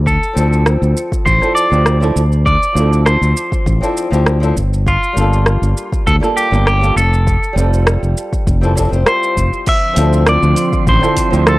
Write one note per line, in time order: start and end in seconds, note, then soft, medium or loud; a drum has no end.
0.00 0.16 D2 medium
0.06 1.25 A4 medium
0.06 kick loud
0.06 shaker soft
0.23 shaker soft
0.33 0.76 D2 medium
0.33 1.37 F3 medium
0.33 1.38 C4 medium
0.33 1.39 D4 medium
0.33 shaker medium
0.39 1.40 E4 medium
0.39 1.41 A4 medium
0.53 shaker soft
0.66 cross-stick medium
0.66 shaker soft
0.82 0.93 D2 medium
0.82 shaker soft
0.97 shaker medium
1.12 kick medium
1.12 shaker soft
1.26 1.38 A1 medium
1.26 1.55 C5 loud
1.26 kick loud
1.26 shaker soft
1.40 1.68 F3 medium
1.40 1.68 C4 medium
1.40 1.69 D4 medium
1.40 1.69 E4 medium
1.40 1.70 A4 medium
1.40 cross-stick soft
1.40 shaker soft
1.55 2.45 D5 loud
1.55 shaker medium
1.70 2.11 D2 medium
1.70 1.98 F3 medium
1.70 1.98 C4 medium
1.70 1.99 D4 medium
1.70 1.99 E4 medium
1.70 2.00 G4 medium
1.70 shaker soft
1.86 cross-stick medium
1.86 shaker soft
2.00 2.19 F3 medium
2.00 2.20 C4 medium
2.00 2.20 D4 medium
2.00 2.20 E4 medium
2.00 2.21 A4 medium
2.00 shaker soft
2.16 2.56 D2 medium
2.16 shaker medium
2.32 shaker soft
2.46 3.05 D5 loud
2.46 kick loud
2.46 shaker soft
2.63 shaker soft
2.73 3.15 D2 medium
2.73 3.77 F3 medium
2.73 3.78 C4 medium
2.73 3.78 D4 medium
2.77 3.80 E4 medium
2.77 3.80 A4 medium
2.77 shaker medium
2.93 shaker soft
3.06 4.52 C5 medium
3.06 cross-stick medium
3.06 shaker soft
3.21 3.33 D2 medium
3.21 shaker soft
3.37 shaker medium
3.52 kick loud
3.52 shaker soft
3.66 3.78 A1 medium
3.66 kick loud
3.66 shaker soft
3.81 4.08 F3 medium
3.81 4.08 C4 medium
3.81 4.09 D4 medium
3.81 4.09 E4 medium
3.81 4.10 A4 medium
3.81 shaker soft
3.97 shaker medium
4.11 4.51 D2 medium
4.11 4.38 F3 medium
4.11 4.38 C4 medium
4.11 4.39 D4 medium
4.11 4.39 E4 medium
4.11 4.40 G4 medium
4.11 shaker soft
4.26 cross-stick medium
4.26 shaker soft
4.40 4.54 F3 medium
4.40 4.54 C4 medium
4.40 4.55 D4 medium
4.40 4.55 E4 medium
4.40 4.56 A4 medium
4.40 shaker soft
4.56 4.96 G1 medium
4.56 kick medium
4.56 shaker medium
4.73 shaker soft
4.87 6.07 F4 loud
4.87 kick loud
4.87 shaker soft
5.03 shaker soft
5.13 5.56 G1 medium
5.13 6.17 G3 medium
5.13 6.18 A#3 medium
5.13 6.19 D4 medium
5.17 6.20 F4 medium
5.17 6.21 A4 medium
5.17 shaker medium
5.33 shaker soft
5.46 cross-stick medium
5.46 shaker soft
5.62 5.73 G1 medium
5.62 shaker soft
5.77 shaker medium
5.92 kick loud
5.92 shaker soft
6.07 6.19 D2 medium
6.07 6.15 A4 loud
6.07 kick loud
6.07 shaker soft
6.20 6.48 G3 medium
6.20 6.48 A#3 medium
6.20 6.49 D4 medium
6.20 6.49 F4 medium
6.20 6.50 A4 medium
6.20 cross-stick soft
6.20 shaker soft
6.37 6.66 G4 loud
6.37 shaker medium
6.51 6.91 G1 loud
6.51 6.78 G3 medium
6.51 6.79 A#3 medium
6.51 6.79 D4 medium
6.51 6.80 G4 medium
6.51 shaker soft
6.67 6.95 G4 medium
6.67 cross-stick medium
6.67 shaker soft
6.81 6.99 G3 medium
6.81 7.00 A#3 medium
6.81 7.00 D4 medium
6.81 7.01 F4 medium
6.81 7.01 A4 medium
6.81 shaker soft
6.96 7.36 F1 loud
6.96 9.03 A4 loud
6.96 shaker medium
7.14 shaker soft
7.27 kick loud
7.27 shaker soft
7.43 shaker soft
7.53 7.96 F1 loud
7.53 8.57 G3 medium
7.53 8.58 C4 medium
7.53 7.60 E4 medium
7.58 8.60 F4 medium
7.58 8.61 A4 medium
7.58 shaker medium
7.74 shaker soft
7.87 cross-stick loud
7.87 shaker soft
8.03 8.13 F1 medium
8.03 shaker soft
8.17 shaker medium
8.33 kick medium
8.33 shaker soft
8.47 8.86 F1 loud
8.47 kick loud
8.47 shaker soft
8.61 8.73 G3 medium
8.61 8.74 C4 medium
8.61 8.74 E4 medium
8.61 8.75 F4 medium
8.61 8.75 A4 medium
8.61 shaker soft
8.75 8.88 G3 medium
8.75 8.89 C4 medium
8.75 8.89 E4 medium
8.75 8.90 F4 medium
8.75 8.90 A4 medium
8.75 kick medium
8.75 shaker medium
8.89 9.03 F1 medium
8.89 9.63 G3 medium
8.89 9.64 C4 medium
8.89 9.65 E4 medium
8.93 9.66 F4 medium
8.93 9.67 C5 medium
8.93 shaker soft
9.06 9.63 C5 medium
9.06 cross-stick loud
9.06 shaker soft
9.23 shaker soft
9.37 9.49 F1 medium
9.37 kick medium
9.37 shaker medium
9.53 shaker soft
9.66 11.59 D3 medium
9.66 11.59 F3 medium
9.66 11.59 C4 medium
9.66 10.28 E5 loud
9.66 11.59 C6 medium
9.66 kick loud
9.66 crash medium
9.66 shaker soft
9.94 10.36 D2 loud
9.94 10.97 F3 medium
9.94 10.98 C4 medium
9.94 10.99 D4 medium
9.94 open hi-hat medium
9.94 shaker medium
9.99 11.00 E4 medium
9.99 11.01 A4 medium
10.13 shaker soft
10.27 10.84 D5 medium
10.27 cross-stick loud
10.27 shaker soft
10.43 10.53 D2 medium
10.43 shaker soft
10.56 open hi-hat medium
10.56 shaker medium
10.73 kick loud
10.73 shaker soft
10.87 10.99 A1 medium
10.87 11.50 C5 medium
10.87 kick loud
10.87 shaker soft
11.01 11.28 F3 medium
11.01 11.28 C4 medium
11.01 11.29 D4 medium
11.01 11.29 E4 medium
11.01 11.30 A4 medium
11.01 cross-stick soft
11.01 shaker soft
11.17 kick medium
11.17 open hi-hat loud
11.17 shaker medium
11.31 11.59 D2 medium
11.31 11.58 F3 medium
11.31 11.58 C4 medium
11.31 11.59 D4 medium
11.31 11.59 E4 medium
11.31 11.59 G4 medium
11.31 shaker soft
11.47 11.59 A4 medium
11.47 cross-stick loud
11.47 shaker soft